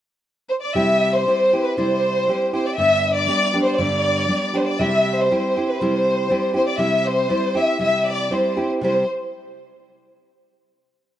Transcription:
0.49 violin section C5
0.62 violin section D5
0.74 nylon-string guitar C3 G3 C4 E4 G4, violin section E5
1.14 violin section C5
1.26 nylon-string guitar G3 C4 E4 G4
1.53 nylon-string guitar C4 E4 G4
1.65 violin section B4
1.77 nylon-string guitar C3 G3 C4 E4 G4, violin section C5
2.28 nylon-string guitar G3 C4 E4 G4
2.53 nylon-string guitar C4 E4 G4, violin section C5
2.65 violin section D5
2.76 nylon-string guitar G2 D3 G3 B3 D4 G4, violin section E5
3.14 violin section D5
3.27 nylon-string guitar G3 B3 D4 G4
3.54 nylon-string guitar G3 B3 D4 G4
3.66 violin section C5
3.78 nylon-string guitar G2 D3 G3 B3 D4 G4, violin section D5
4.28 nylon-string guitar G3 B3 D4 G4
4.54 nylon-string guitar G3 B3 D4 G4, violin section C5
4.67 violin section D5
4.79 nylon-string guitar C3 G3 C4 E4 G4, violin section E5
5.18 violin section C5
5.31 nylon-string guitar G3 C4 E4 G4
5.57 nylon-string guitar C4 E4 G4
5.67 violin section B4
5.80 nylon-string guitar C3 G3 C4 E4 G4, violin section C5
6.30 nylon-string guitar G3 C4 E4 G4
6.54 nylon-string guitar C4 E4 G4, violin section C5
6.68 violin section D5
6.78 nylon-string guitar C3 G3 C4 E4 G4, violin section E5
7.06 violin section C5
7.29 nylon-string guitar G3 C4 E4 G4
7.55 nylon-string guitar C4 E4 G4, violin section E5
7.79 nylon-string guitar C3 G3 C4 E4 G4, violin section E5
8.08 violin section D5
8.30 nylon-string guitar G3 C4 E4 G4, violin section C5
8.57 nylon-string guitar C4 E4 G4
8.81 nylon-string guitar C3 G3 C4 E4 G4, violin section C5

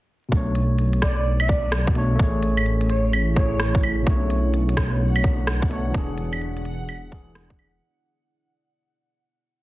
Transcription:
0.29 detuned saw bass B1, tine electric piano B2 A3, kick
0.34 tine electric piano D4 C#5
0.55 closed hi-hat
0.79 closed hi-hat
0.93 closed hi-hat
1.02 digital synth lead D5, kick, cross-stick, closed hi-hat
1.40 digital synth lead E5, claves
1.48 digital synth lead D5, kick, closed hi-hat
1.72 cross-stick
1.87 kick
1.94 tine electric piano B2 A3 D4 C#5, closed hi-hat
2.15 tine electric piano A3
2.19 detuned saw bass A1, ambient pad A3, tine electric piano G#4, kick
2.23 tine electric piano C#5
2.37 ambient pad G#4
2.43 closed hi-hat
2.48 ambient pad E4
2.57 claves
2.64 ambient pad C#4, closed hi-hat
2.81 closed hi-hat
2.89 digital synth lead C#5, closed hi-hat
3.01 ambient pad C#5
3.13 claves
3.35 tine electric piano A3 G#4 C#5, digital synth lead C#5, kick, closed hi-hat
3.60 cross-stick
3.75 kick
3.83 closed hi-hat, claves
4.02 tine electric piano B2 A3, ambient pad B3
4.07 detuned saw bass B1, tine electric piano D4 C#5, synth texture F#5, kick
4.30 closed hi-hat
4.42 ambient pad D4 F#4
4.47 ambient pad A4
4.54 closed hi-hat
4.69 closed hi-hat
4.77 kick, cross-stick, closed hi-hat
5.16 claves
5.24 kick, closed hi-hat
5.47 cross-stick
5.62 kick
5.69 tine electric piano B2 A3 D4 C#5, closed hi-hat
5.90 tine electric piano E3 D4
5.94 detuned saw bass E1, tine electric piano G#4, kick
6.18 closed hi-hat
6.33 claves
6.42 closed hi-hat
6.47 ambient pad G#4
6.56 ambient pad E4, closed hi-hat
6.65 closed hi-hat
6.89 claves
7.11 tine electric piano E3 D4 G#4, kick, closed hi-hat
7.35 cross-stick
7.50 kick
7.59 closed hi-hat, claves

